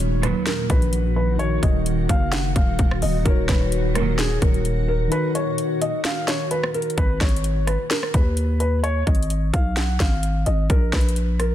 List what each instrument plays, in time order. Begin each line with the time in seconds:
Already playing: 808-style bass D#1, ambient pad A#2 D#3 F#4, synth keys D#3 D#4 F#4, felt piano C#5
0.00 closed hi-hat
0.23 string section D#2 A#2 F#3, felt piano B4, cross-stick, closed hi-hat
0.46 felt piano A#4, snare, closed hi-hat
0.70 808-style bass A#1, felt piano B4, kick, closed hi-hat
0.82 closed hi-hat
0.93 closed hi-hat
1.16 felt piano B4
1.36 synth keys D#3 D#4, felt piano C#5, closed hi-hat
1.40 synth keys F#4 A#4
1.62 808-style bass D#1, felt piano D#5, kick, closed hi-hat
1.86 closed hi-hat
2.09 808-style bass F#1, felt piano F5, kick, closed hi-hat
2.32 felt piano F#5, snare, closed hi-hat
2.55 808-style bass D#1, felt piano F5, kick, closed hi-hat
2.79 808-style bass D#1, kick, closed hi-hat
2.91 cross-stick
3.02 808-style bass D#1, felt piano D#5, open hi-hat
3.22 808-style bass D#1, synth keys D#3 D#4, felt piano A#4, kick, closed hi-hat
3.27 synth keys F#4 C#5
3.49 808-style bass D#1, felt piano B4, kick, snare, closed hi-hat
3.72 closed hi-hat
3.95 string section D#2 A#2 F#3, felt piano A#4, cross-stick, closed hi-hat
4.18 felt piano G#4, snare, closed hi-hat
4.42 808-style bass D#1, felt piano A#4, kick, closed hi-hat
4.54 closed hi-hat
4.65 closed hi-hat
4.88 felt piano A#4
5.08 synth keys D#3 D#4
5.12 synth keys F#4 A#4, felt piano B4, closed hi-hat
5.35 felt piano C#5, closed hi-hat
5.58 closed hi-hat
5.82 felt piano D#5, closed hi-hat
6.05 felt piano F5, snare, closed hi-hat
6.28 felt piano C#5, snare, closed hi-hat
6.51 felt piano B4, closed hi-hat
6.63 cross-stick
6.74 felt piano A#4, closed hi-hat
6.82 closed hi-hat
6.90 closed hi-hat
6.98 808-style bass G#1, felt piano B4, kick, closed hi-hat
7.21 808-style bass G#1, felt piano C#5, kick, snare, closed hi-hat
7.29 closed hi-hat
7.36 closed hi-hat
7.44 closed hi-hat
7.67 felt piano B4, cross-stick, closed hi-hat
7.91 felt piano A#4, snare, closed hi-hat
8.03 cross-stick
8.14 808-style bass D#2, felt piano B4, kick, closed hi-hat
8.37 closed hi-hat
8.60 felt piano B4, closed hi-hat
8.83 felt piano C#5, closed hi-hat
9.07 808-style bass G#1, kick, closed hi-hat
9.15 closed hi-hat
9.22 closed hi-hat
9.30 closed hi-hat
9.53 808-style bass B1, felt piano F5, kick, closed hi-hat
9.77 felt piano F#5, snare, closed hi-hat
10.00 808-style bass G#1, felt piano F5, kick, snare, closed hi-hat
10.23 closed hi-hat
10.46 808-style bass G#1, felt piano D#5, closed hi-hat
10.70 808-style bass A#1, felt piano A#4, kick, closed hi-hat
10.93 808-style bass A#1, felt piano B4, kick, snare, closed hi-hat
11.01 closed hi-hat
11.09 closed hi-hat
11.16 closed hi-hat
11.40 felt piano A#4, cross-stick, closed hi-hat